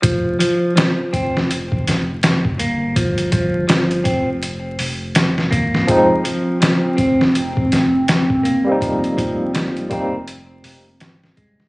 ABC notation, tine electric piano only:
X:1
M:4/4
L:1/16
Q:"Swing 16ths" 1/4=82
K:Fm
V:1 name="Tine electric piano"
z16 | z16 | [F,A,CE] z12 z2 [G,B,CE]- | [G,B,CE]6 [G,B,CE] z8 z |]